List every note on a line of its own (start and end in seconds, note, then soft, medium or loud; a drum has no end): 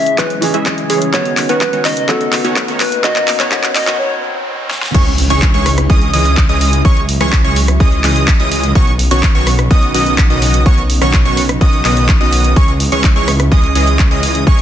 0.00 3.95 C#3 medium
0.00 0.41 E3 medium
0.00 0.42 G#3 medium
0.00 1.10 G#3 medium
0.00 0.43 C#4 medium
0.00 1.10 E4 medium
0.00 0.43 G#4 loud
0.00 0.20 E5 loud
0.00 riser medium
0.06 closed hi-hat soft
0.18 0.51 E3 medium
0.18 0.51 G#3 medium
0.18 0.51 C#4 medium
0.18 0.51 G#4 medium
0.18 0.54 B4 medium
0.18 0.51 D#5 medium
0.18 kick loud
0.18 clap medium
0.18 closed hi-hat medium
0.30 closed hi-hat soft
0.41 1.10 E3 loud
0.41 1.10 G#3 medium
0.41 1.11 C#4 medium
0.41 1.11 G#4 loud
0.41 open hi-hat loud
0.54 0.70 E3 medium
0.54 0.70 G#3 medium
0.54 0.70 C#4 medium
0.54 0.70 G#4 medium
0.54 0.70 E5 loud
0.54 closed hi-hat medium
0.66 kick loud
0.66 clap medium
0.66 closed hi-hat medium
0.78 closed hi-hat soft
0.90 1.11 E3 medium
0.90 1.11 G#3 medium
0.90 1.11 C#4 medium
0.90 1.11 G#4 medium
0.90 1.15 G#4 medium
0.90 1.11 C#5 loud
0.90 open hi-hat loud
1.02 closed hi-hat medium
1.12 2.06 D#3 medium
1.12 1.29 D#3 medium
1.12 2.07 B3 medium
1.12 1.29 B3 medium
1.12 3.96 B3 medium
1.12 1.29 C#4 medium
1.12 2.07 C#4 medium
1.12 3.96 D#4 medium
1.12 1.29 F#4 medium
1.12 2.07 F#4 medium
1.12 1.29 C#5 medium
1.12 1.51 C#5 loud
1.12 kick loud
1.12 clap medium
1.12 closed hi-hat medium
1.25 closed hi-hat soft
1.37 clap medium
1.37 open hi-hat loud
1.49 1.65 D#3 medium
1.49 1.65 B3 medium
1.49 1.65 C#4 medium
1.49 1.65 F#4 medium
1.49 1.87 B4 loud
1.49 1.65 C#5 medium
1.49 closed hi-hat medium
1.61 kick loud
1.61 clap medium
1.61 closed hi-hat medium
1.73 1.89 D#3 medium
1.73 1.89 B3 medium
1.73 1.89 C#4 medium
1.73 1.89 F#4 medium
1.73 1.89 C#5 medium
1.73 closed hi-hat soft
1.85 2.10 D#5 loud
1.85 clap medium
1.85 open hi-hat loud
1.97 closed hi-hat soft
2.08 3.01 D#3 medium
2.08 2.25 D#3 medium
2.08 3.02 B3 medium
2.08 2.25 B3 medium
2.08 2.25 C#4 medium
2.08 3.02 C#4 medium
2.08 2.25 F#4 medium
2.08 3.03 F#4 loud
2.08 2.45 A4 medium
2.08 2.25 C#5 medium
2.08 kick loud
2.08 clap medium
2.08 closed hi-hat soft
2.21 closed hi-hat soft
2.33 clap medium
2.33 open hi-hat loud
2.44 2.60 D#3 medium
2.44 2.60 B3 medium
2.44 2.60 C#4 medium
2.44 2.60 F#4 medium
2.44 2.60 C#5 medium
2.44 closed hi-hat soft
2.56 kick loud
2.56 clap medium
2.56 closed hi-hat medium
2.68 2.84 D#3 medium
2.68 2.84 B3 medium
2.68 2.84 C#4 medium
2.68 2.84 F#4 medium
2.68 2.84 C#5 medium
2.68 closed hi-hat soft
2.80 3.06 B4 loud
2.80 clap medium
2.80 open hi-hat loud
2.92 closed hi-hat medium
3.03 3.49 D#3 medium
3.03 3.20 D#3 medium
3.03 3.50 B3 medium
3.03 3.20 B3 medium
3.03 3.20 C#4 medium
3.03 3.50 C#4 medium
3.03 3.20 F#4 medium
3.03 3.50 F#4 loud
3.03 3.20 C#5 medium
3.03 3.41 D#5 loud
3.03 kick loud
3.03 clap medium
3.03 closed hi-hat soft
3.16 clap medium
3.16 closed hi-hat soft
3.28 clap loud
3.28 open hi-hat loud
3.40 3.50 D#3 medium
3.40 3.50 B3 medium
3.40 3.50 C#4 medium
3.40 3.50 F#4 medium
3.40 3.50 C#5 loud
3.40 3.77 C#5 loud
3.40 clap medium
3.40 closed hi-hat soft
3.50 3.97 D#3 loud
3.50 3.67 D#3 medium
3.50 3.97 B3 medium
3.50 3.67 B3 medium
3.50 3.98 C#4 medium
3.50 3.67 F#4 medium
3.50 3.98 F#4 loud
3.50 kick loud
3.50 clap loud
3.50 closed hi-hat medium
3.64 clap medium
3.64 closed hi-hat soft
3.75 3.99 D#5 loud
3.75 clap loud
3.75 open hi-hat loud
3.87 3.97 D#3 medium
3.87 3.97 B3 medium
3.87 3.97 C#4 medium
3.87 3.97 F#4 medium
3.87 3.97 C#5 medium
3.87 clap medium
3.87 closed hi-hat soft
3.99 4.32 C#5 medium
4.71 snare medium
4.83 snare medium
4.94 5.28 C#2 loud
4.94 14.62 C#3 medium
4.94 5.10 E3 medium
4.94 5.10 G#3 medium
4.94 6.83 G#3 medium
4.94 5.10 C#4 medium
4.94 8.72 E4 medium
4.94 5.10 G#4 medium
4.94 5.10 C#5 medium
4.94 5.10 C#6 medium
4.94 kick loud
4.94 closed hi-hat medium
4.94 crash loud
4.94 impact medium
5.06 closed hi-hat soft
5.18 open hi-hat loud
5.30 5.52 C#2 medium
5.30 5.46 E3 medium
5.30 5.46 G#3 medium
5.30 5.46 C#4 medium
5.30 5.46 G#4 medium
5.30 5.46 C#5 loud
5.30 5.46 C#6 loud
5.30 closed hi-hat medium
5.42 kick loud
5.42 clap loud
5.42 closed hi-hat medium
5.54 5.87 C#2 loud
5.54 5.70 E3 medium
5.54 5.70 G#3 medium
5.54 5.70 C#4 medium
5.54 5.70 G#4 medium
5.54 5.70 C#5 medium
5.54 5.70 C#6 loud
5.54 closed hi-hat soft
5.66 cross-stick medium
5.66 open hi-hat loud
5.78 cross-stick medium
5.78 closed hi-hat medium
5.90 6.11 C#2 loud
5.90 6.11 E3 medium
5.90 6.11 G#3 medium
5.90 6.11 C#4 medium
5.90 6.11 G#4 medium
5.90 6.11 D#5 medium
5.90 6.11 D#6 medium
5.90 kick loud
5.90 closed hi-hat medium
6.02 closed hi-hat soft
6.13 6.47 C#2 loud
6.13 6.39 E3 medium
6.13 6.39 G#3 medium
6.13 6.39 C#4 medium
6.13 6.39 G#4 medium
6.13 6.39 D#5 loud
6.13 6.39 D#6 loud
6.13 open hi-hat loud
6.25 closed hi-hat medium
6.37 kick loud
6.37 clap loud
6.37 closed hi-hat medium
6.49 6.83 C#2 medium
6.49 6.82 E3 medium
6.49 6.82 G#3 medium
6.49 6.82 C#4 medium
6.49 6.82 G#4 medium
6.49 6.82 D#5 medium
6.49 6.82 D#6 medium
6.49 closed hi-hat soft
6.61 open hi-hat loud
6.73 closed hi-hat medium
6.85 7.18 C#2 loud
6.85 7.01 E3 medium
6.85 8.74 F#3 medium
6.85 7.01 G#3 medium
6.85 7.01 C#4 medium
6.85 7.01 G#4 medium
6.85 7.01 C#5 medium
6.85 7.01 C#6 loud
6.85 kick loud
6.85 closed hi-hat medium
6.97 closed hi-hat soft
7.09 open hi-hat loud
7.21 7.42 C#2 loud
7.21 7.36 E3 medium
7.21 7.36 G#3 medium
7.21 7.36 C#4 medium
7.21 7.36 G#4 medium
7.21 7.36 C#5 loud
7.21 7.37 C#6 loud
7.21 cross-stick medium
7.21 closed hi-hat medium
7.33 kick loud
7.33 clap loud
7.33 closed hi-hat medium
7.44 7.78 C#2 loud
7.44 7.60 E3 medium
7.44 7.60 G#3 medium
7.44 7.60 C#4 medium
7.44 7.60 G#4 medium
7.44 7.60 C#5 medium
7.44 7.60 C#6 medium
7.44 closed hi-hat soft
7.56 open hi-hat loud
7.68 cross-stick medium
7.68 closed hi-hat soft
7.80 8.02 C#2 loud
7.80 8.02 E3 medium
7.80 8.02 G#3 medium
7.80 8.02 C#4 medium
7.80 8.02 G#4 medium
7.80 8.02 D#5 medium
7.80 8.02 D#6 medium
7.80 kick loud
7.80 closed hi-hat medium
7.92 closed hi-hat soft
8.04 8.37 C#2 loud
8.04 8.29 E3 medium
8.04 8.29 G#3 medium
8.04 8.29 C#4 medium
8.04 8.29 G#4 medium
8.04 8.29 D#5 loud
8.04 8.29 D#6 loud
8.04 clap medium
8.04 open hi-hat loud
8.16 closed hi-hat medium
8.28 kick loud
8.28 clap loud
8.28 closed hi-hat medium
8.40 8.73 C#2 loud
8.40 8.73 E3 medium
8.40 8.73 G#3 medium
8.40 8.73 C#4 medium
8.40 8.73 G#4 medium
8.40 8.73 D#5 medium
8.40 8.73 D#6 medium
8.40 closed hi-hat soft
8.52 open hi-hat loud
8.63 closed hi-hat medium
8.75 9.09 B1 loud
8.75 8.91 D#3 medium
8.75 8.91 B3 medium
8.75 12.53 B3 medium
8.75 8.91 C#4 medium
8.75 12.53 D#4 medium
8.75 8.91 F#4 medium
8.75 8.91 C#5 medium
8.75 8.91 C#6 loud
8.75 kick loud
8.75 closed hi-hat soft
8.87 closed hi-hat soft
8.99 open hi-hat loud
9.11 9.33 B1 loud
9.11 9.27 D#3 medium
9.11 9.27 B3 medium
9.11 9.27 C#4 medium
9.11 9.27 F#4 medium
9.11 9.27 C#5 medium
9.11 9.27 C#6 loud
9.11 closed hi-hat medium
9.23 kick loud
9.23 clap loud
9.23 closed hi-hat medium
9.35 9.68 B1 loud
9.35 9.51 D#3 medium
9.35 9.51 B3 medium
9.35 9.51 C#4 medium
9.35 9.51 F#4 medium
9.35 9.51 C#5 medium
9.35 9.51 C#6 loud
9.35 closed hi-hat soft
9.47 cross-stick medium
9.47 open hi-hat loud
9.59 cross-stick medium
9.59 closed hi-hat soft
9.71 9.92 B1 loud
9.71 9.92 D#3 medium
9.71 9.92 B3 medium
9.71 9.92 C#4 medium
9.71 9.92 F#4 medium
9.71 9.92 D#5 medium
9.71 9.92 D#6 medium
9.71 kick loud
9.71 closed hi-hat medium
9.83 closed hi-hat soft
9.94 10.28 B1 loud
9.94 10.20 D#3 medium
9.94 10.20 B3 medium
9.94 10.20 C#4 medium
9.94 10.20 F#4 medium
9.94 10.20 D#5 loud
9.94 10.20 D#6 loud
9.94 open hi-hat loud
10.06 closed hi-hat medium
10.18 kick loud
10.18 clap loud
10.18 closed hi-hat medium
10.30 10.63 B1 loud
10.30 10.63 D#3 medium
10.30 10.63 B3 medium
10.30 10.63 C#4 medium
10.30 10.63 F#4 medium
10.30 10.63 D#5 medium
10.30 10.63 D#6 medium
10.30 closed hi-hat soft
10.42 open hi-hat loud
10.54 closed hi-hat medium
10.66 10.99 B1 loud
10.66 10.82 D#3 medium
10.66 10.82 B3 medium
10.66 10.82 C#4 medium
10.66 10.82 F#4 medium
10.66 10.82 C#5 medium
10.66 10.82 C#6 medium
10.66 kick loud
10.66 closed hi-hat soft
10.78 closed hi-hat soft
10.90 open hi-hat loud
11.02 11.23 B1 medium
11.02 11.17 D#3 medium
11.02 11.17 B3 medium
11.02 11.17 C#4 medium
11.02 11.17 F#4 medium
11.02 11.17 C#5 medium
11.02 11.17 C#6 loud
11.02 cross-stick medium
11.02 closed hi-hat soft
11.13 kick loud
11.13 clap loud
11.13 closed hi-hat medium
11.25 11.59 B1 loud
11.25 11.41 D#3 medium
11.25 11.41 B3 medium
11.25 11.41 C#4 medium
11.25 11.41 F#4 medium
11.25 11.41 C#5 medium
11.25 11.41 C#6 loud
11.25 closed hi-hat soft
11.37 open hi-hat loud
11.49 cross-stick medium
11.49 closed hi-hat soft
11.61 11.83 B1 loud
11.61 11.83 D#3 medium
11.61 11.83 B3 medium
11.61 11.83 C#4 medium
11.61 11.83 F#4 medium
11.61 11.83 D#5 medium
11.61 11.83 D#6 medium
11.61 kick loud
11.61 closed hi-hat soft
11.73 closed hi-hat soft
11.85 12.18 B1 loud
11.85 12.10 D#3 medium
11.85 12.10 B3 medium
11.85 12.10 C#4 medium
11.85 12.10 F#4 medium
11.85 12.10 D#5 loud
11.85 12.10 D#6 loud
11.85 clap medium
11.85 open hi-hat loud
11.97 closed hi-hat soft
12.09 kick loud
12.09 clap loud
12.09 closed hi-hat soft
12.21 12.54 B1 loud
12.21 12.54 D#3 medium
12.21 12.54 B3 medium
12.21 12.54 C#4 medium
12.21 12.54 F#4 medium
12.21 12.54 D#5 medium
12.21 12.54 D#6 medium
12.21 closed hi-hat soft
12.33 open hi-hat loud
12.44 closed hi-hat medium
12.56 12.90 C#2 loud
12.56 12.72 E3 medium
12.56 12.72 G#3 medium
12.56 14.62 G#3 medium
12.56 12.72 C#4 medium
12.56 14.62 E4 medium
12.56 12.72 G#4 medium
12.56 12.72 C#5 loud
12.56 12.72 C#6 medium
12.56 kick loud
12.56 closed hi-hat soft
12.68 closed hi-hat soft
12.80 open hi-hat loud
12.92 13.14 C#2 medium
12.92 13.08 E3 medium
12.92 13.08 G#3 medium
12.92 13.08 C#4 medium
12.92 13.08 G#4 medium
12.92 13.08 C#5 medium
12.92 13.08 C#6 loud
12.92 closed hi-hat medium
13.04 kick loud
13.04 clap loud
13.04 closed hi-hat medium
13.16 13.49 C#2 loud
13.16 13.32 E3 medium
13.16 13.32 G#3 medium
13.16 13.32 C#4 medium
13.16 13.32 G#4 medium
13.16 13.32 C#5 medium
13.16 13.32 C#6 loud
13.16 closed hi-hat soft
13.28 cross-stick medium
13.28 open hi-hat loud
13.40 cross-stick medium
13.40 closed hi-hat soft
13.52 13.73 C#2 loud
13.52 13.73 E3 medium
13.52 13.73 G#3 medium
13.52 13.73 C#4 medium
13.52 13.73 G#4 medium
13.52 13.73 D#5 medium
13.52 13.73 D#6 medium
13.52 kick loud
13.52 closed hi-hat soft
13.64 closed hi-hat soft
13.75 14.09 C#2 loud
13.75 14.01 E3 medium
13.75 14.01 G#3 medium
13.75 14.01 C#4 medium
13.75 14.01 G#4 medium
13.75 14.01 D#5 loud
13.75 14.01 D#6 loud
13.75 open hi-hat loud
13.87 closed hi-hat soft
13.99 kick loud
13.99 clap loud
13.99 closed hi-hat soft
14.11 14.44 C#2 loud
14.11 14.44 E3 medium
14.11 14.44 G#3 medium
14.11 14.44 C#4 medium
14.11 14.44 G#4 medium
14.11 14.44 D#5 medium
14.11 14.44 D#6 medium
14.11 closed hi-hat soft
14.23 open hi-hat loud
14.35 closed hi-hat medium
14.47 14.62 C#2 loud
14.47 14.62 E3 medium
14.47 14.62 G#3 medium
14.47 14.62 C#4 medium
14.47 14.62 G#4 medium
14.47 14.62 C#5 medium
14.47 14.62 C#6 medium
14.47 kick loud
14.47 closed hi-hat medium
14.59 closed hi-hat soft